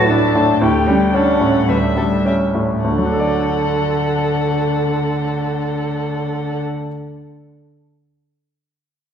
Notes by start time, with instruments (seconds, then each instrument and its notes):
Already playing: grand piano D2 A2 F#3 D4, violin B4 A5
0.08 grand piano D4, cello E4, violin A4
0.34 grand piano A2, cello D4
0.60 grand piano D2, cello E4, violin G4 G5
0.86 grand piano G3, cello C#4
1.12 grand piano C#4, cello D4, violin A4 F#5
1.40 grand piano A2, cello C#4
1.68 grand piano D2, cello G3, violin B4 E5
1.96 grand piano G3, violin A4
2.25 grand piano C#4, violin G4 E5
2.54 grand piano A2
2.84 grand piano D2, cello D3, violin A4 F#5
2.92 grand piano D3
2.98 grand piano F#3
3.06 grand piano D4
3.12 grand piano A4
3.20 grand piano D5